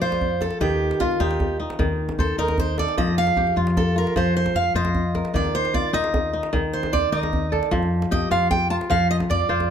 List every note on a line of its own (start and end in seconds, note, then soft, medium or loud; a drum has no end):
0.00 0.46 F2 medium
0.00 0.66 F3 medium
0.00 1.01 F4 medium
0.00 1.20 C5 medium
0.00 0.42 C5 loud
0.00 0.67 D5 medium
0.12 djembe slap medium
0.12 djembe tone soft
0.21 djembe bass medium
0.41 0.60 A4 medium
0.41 djembe slap soft
0.41 djembe tone medium
0.51 djembe slap soft
0.60 0.91 D#2 medium
0.60 1.78 D#3 medium
0.60 1.01 G4 medium
0.60 djembe slap soft
0.60 djembe bass medium
0.70 djembe slap soft
0.70 djembe tone soft
0.81 djembe slap soft
0.91 djembe slap soft
1.00 1.15 D#2 medium
1.00 1.20 F4 medium
1.00 2.52 F4 medium
1.00 djembe bass medium
1.11 djembe tone soft
1.20 1.65 D#2 loud
1.20 1.59 D#4 medium
1.20 1.57 G4 medium
1.31 djembe slap medium
1.40 djembe tone medium
1.40 djembe bass medium
1.60 2.38 D#4 medium
1.70 djembe slap medium
1.79 2.09 D#2 medium
1.79 3.03 D#3 medium
1.79 djembe tone medium
1.79 djembe bass medium
1.89 djembe slap soft
2.09 djembe slap medium
2.09 djembe tone medium
2.18 2.34 D#2 medium
2.18 2.38 A4 medium
2.18 3.38 C5 medium
2.18 djembe bass medium
2.38 2.83 D#2 medium
2.38 4.01 D#4 medium
2.38 2.57 A#4 medium
2.38 3.66 A#4 medium
2.48 djembe slap medium
2.48 djembe tone medium
2.58 2.79 C5 medium
2.58 djembe bass medium
2.78 4.10 A4 medium
2.78 2.97 D5 medium
2.78 djembe tone medium
2.88 djembe slap soft
2.98 3.28 F2 loud
2.98 4.15 F3 medium
2.98 3.16 D#5 medium
2.98 djembe bass medium
3.08 djembe slap soft
3.08 djembe tone medium
3.18 3.54 F5 loud
3.27 djembe slap medium
3.37 3.52 F2 medium
3.37 4.78 G4 medium
3.37 djembe bass medium
3.47 djembe tone medium
3.56 4.02 F2 medium
3.56 3.95 F4 medium
3.67 djembe slap medium
3.77 3.95 A4 medium
3.77 djembe slap soft
3.77 djembe tone medium
3.77 djembe bass medium
3.96 4.75 F4 medium
3.96 4.17 A#4 medium
4.07 djembe slap medium
4.16 4.46 F2 medium
4.16 5.39 F3 medium
4.16 4.35 C5 medium
4.16 djembe slap soft
4.16 djembe tone medium
4.16 djembe bass medium
4.37 4.56 C5 medium
4.46 djembe slap medium
4.46 djembe tone medium
4.54 4.70 F2 medium
4.54 5.55 F5 medium
4.54 4.75 F5 medium
4.74 5.20 F2 medium
4.74 5.74 F4 medium
4.74 5.94 C5 medium
4.74 5.35 D#5 medium
4.85 djembe slap medium
4.85 djembe tone medium
4.95 djembe bass medium
5.15 6.42 A#4 medium
5.15 djembe slap soft
5.15 djembe tone medium
5.25 djembe slap medium
5.33 5.64 D#2 medium
5.33 6.52 D#3 medium
5.33 5.53 D5 medium
5.33 djembe bass medium
5.45 djembe slap soft
5.45 djembe tone medium
5.55 5.73 C5 medium
5.55 djembe slap soft
5.65 djembe slap medium
5.74 5.89 D#2 medium
5.74 7.25 F4 medium
5.74 5.94 D5 medium
5.74 djembe bass medium
5.93 6.39 D#2 medium
5.93 6.33 D#4 medium
5.93 6.49 D#5 medium
6.04 djembe slap medium
6.14 djembe slap soft
6.14 djembe tone medium
6.14 djembe bass medium
6.33 7.12 D#4 medium
6.43 djembe slap medium
6.53 6.83 D#2 medium
6.53 7.76 D#3 medium
6.53 djembe slap soft
6.53 djembe tone medium
6.53 djembe bass medium
6.73 6.93 C5 medium
6.83 djembe slap medium
6.83 djembe tone medium
6.93 7.08 D#2 medium
6.93 8.11 C5 medium
6.93 7.11 D5 medium
6.93 djembe bass medium
7.12 7.58 D#2 loud
7.12 8.74 D#4 medium
7.12 8.40 A#4 medium
7.12 7.52 D#5 medium
7.23 djembe slap medium
7.23 djembe tone medium
7.33 djembe bass medium
7.52 8.84 A4 medium
7.52 7.68 D5 medium
7.52 djembe slap soft
7.52 djembe tone medium
7.63 djembe slap medium
7.71 8.02 F2 loud
7.71 8.88 F3 medium
7.71 djembe bass medium
7.83 djembe slap soft
7.83 djembe tone medium
7.93 djembe slap soft
8.02 djembe slap medium
8.11 8.26 F2 medium
8.11 9.52 G4 medium
8.11 8.31 D#5 medium
8.11 djembe bass medium
8.22 djembe tone soft
8.31 8.76 F2 medium
8.31 8.70 F4 medium
8.31 8.50 F5 medium
8.51 8.70 G5 medium
8.51 djembe tone medium
8.51 djembe bass medium
8.70 9.49 F4 medium
8.70 8.76 A5 medium
8.81 djembe slap medium
8.90 9.20 F2 medium
8.90 9.70 F3 medium
8.90 9.10 F5 loud
8.90 djembe slap soft
8.90 djembe tone medium
8.90 djembe bass medium
9.11 9.16 D#5 loud
9.20 djembe slap medium
9.20 djembe tone medium
9.29 9.44 F2 medium
9.29 9.70 D5 medium
9.29 djembe bass medium
9.49 9.70 F2 medium
9.49 9.70 F4 medium
9.49 9.70 C5 medium
9.60 djembe slap soft
9.60 djembe tone soft